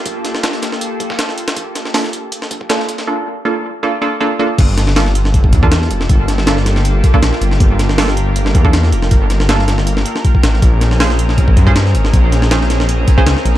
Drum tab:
CC |----------------|----------------|----------------|x---------------|
HH |x-x-xxx-x-x-x-xx|x-x-o-x-x-x-x-xx|----------------|x-x-o-x-x-x-x-x-|
TB |x-x-x-x-x-x-x-x-|x-x-x-x-x-x-x-x-|----------------|----------------|
SD |--oooooo---ooo-o|--oooo---o--oooo|----------------|--oooo-o----oo-o|
BD |o---------oo----|o---------oo----|----------------|o-------oooo----|

CC |----------------|----------------|----------------|----------------|
HH |x-x-x-x-x-x-x-x-|x-x-o-x-x-x-x-x-|x-x-x-x-x-x-x-x-|x-x-o-x-x-x-x-x-|
TB |----------------|----------------|----------------|----------------|
SD |--oooooo----oo-o|--oooo---o--oo-o|--oooooo-o-o--oo|--oooo-o----oo-o|
BD |o---------oo----|o---------oo----|o-----------oo--|o-------oooo----|

CC |----------------|
HH |x-x-x-x-x-x-x-x-|
TB |----------------|
SD |--oooooo----oo--|
BD |o---------oo----|